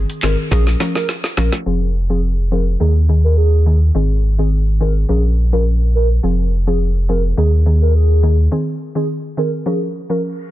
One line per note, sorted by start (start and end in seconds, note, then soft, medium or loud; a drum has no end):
0.00 0.20 D#3 medium
0.00 0.20 C4 medium
0.00 0.20 G#4 medium
0.10 closed hi-hat medium
0.23 0.36 G#1 loud
0.23 0.50 D#3 medium
0.23 0.50 C4 medium
0.23 0.50 G#4 medium
0.23 0.36 A#4 medium
0.23 snare loud
0.23 clap loud
0.23 closed hi-hat medium
0.23 high bongo soft
0.23 low bongo medium
0.51 0.75 A#1 loud
0.51 0.78 F3 medium
0.51 0.78 C#4 medium
0.51 0.65 G#4 medium
0.51 0.79 A#4 loud
0.51 kick medium
0.51 snare medium
0.51 closed hi-hat medium
0.51 high bongo medium
0.67 snare medium
0.67 closed hi-hat medium
0.67 high bongo soft
0.80 1.02 F3 medium
0.80 1.02 C#4 medium
0.80 1.02 A#4 medium
0.80 snare medium
0.80 closed hi-hat medium
0.80 high bongo medium
0.95 1.07 A#4 medium
0.95 snare medium
0.95 high bongo medium
1.09 snare medium
1.09 closed hi-hat medium
1.24 snare medium
1.37 1.50 A#1 medium
1.37 1.59 F3 medium
1.37 1.59 C#4 medium
1.37 1.50 A#4 medium
1.37 1.59 A#4 medium
1.37 snare loud
1.37 closed hi-hat medium
1.37 low bongo medium
1.52 snare loud
1.52 high bongo medium
1.66 2.76 F1 medium
1.66 1.87 F3 medium
1.66 1.87 C4 medium
1.66 1.88 G#4 loud
2.10 2.30 F3 medium
2.10 2.30 C4 medium
2.10 2.21 G#4 medium
2.10 2.31 G#4 medium
2.52 2.73 F3 medium
2.52 2.73 C4 medium
2.52 2.73 G#4 medium
2.52 2.65 A#4 medium
2.80 3.91 D#2 medium
2.80 3.07 D#3 medium
2.80 3.07 A#3 medium
2.80 2.93 G#4 medium
2.80 3.07 G#4 loud
3.09 3.30 D#3 medium
3.09 3.30 A#3 medium
3.09 3.31 G#4 medium
3.24 3.35 A#4 medium
3.37 3.79 G#4 medium
3.66 3.93 D#3 medium
3.66 3.93 A#3 medium
3.66 3.93 G#4 medium
3.95 5.05 G#1 medium
3.95 4.16 D#3 medium
3.95 4.16 C4 medium
3.95 4.16 G#4 loud
4.38 4.59 D#3 medium
4.38 4.59 C4 medium
4.38 4.50 G#4 medium
4.38 4.59 G#4 medium
4.80 5.02 D#3 medium
4.80 5.02 C4 medium
4.80 5.02 G#4 medium
4.80 4.93 A#4 medium
5.09 6.19 A#1 medium
5.09 5.30 F3 medium
5.09 5.30 C#4 medium
5.09 5.22 G#4 medium
5.09 5.30 A#4 loud
5.53 5.73 F3 medium
5.53 5.73 C#4 medium
5.53 5.64 A#4 medium
5.53 5.73 A#4 medium
5.95 6.08 A#4 medium
6.23 7.34 F1 medium
6.23 6.45 F3 medium
6.23 6.45 C4 medium
6.23 6.45 G#4 loud
6.67 6.88 F3 medium
6.67 6.88 C4 medium
6.67 6.78 G#4 medium
6.67 6.88 G#4 medium
7.09 7.30 F3 medium
7.09 7.30 C4 medium
7.09 7.31 G#4 medium
7.09 7.22 A#4 medium
7.37 8.48 D#2 medium
7.37 7.64 D#3 medium
7.37 7.64 A#3 medium
7.37 7.51 G#4 medium
7.37 7.64 G#4 loud
7.66 7.87 D#3 medium
7.66 7.88 A#3 medium
7.66 7.88 G#4 medium
7.82 7.93 A#4 medium
7.95 8.36 G#4 medium
8.23 8.50 D#3 medium
8.23 8.50 A#3 medium
8.23 8.50 G#4 medium
8.52 8.73 D#3 medium
8.52 8.73 C4 medium
8.52 8.73 G#4 loud
8.95 9.16 D#3 medium
8.95 9.16 C4 medium
8.95 9.16 G#4 medium
8.95 9.07 G#4 medium
9.37 9.59 D#3 medium
9.37 9.59 C4 medium
9.37 9.59 G#4 medium
9.37 9.51 A#4 medium
9.66 9.87 F3 medium
9.66 9.87 C#4 medium
9.66 9.79 G#4 medium
9.66 9.88 A#4 loud
10.10 10.30 F3 medium
10.10 10.30 C#4 medium
10.10 10.21 A#4 medium
10.10 10.30 A#4 medium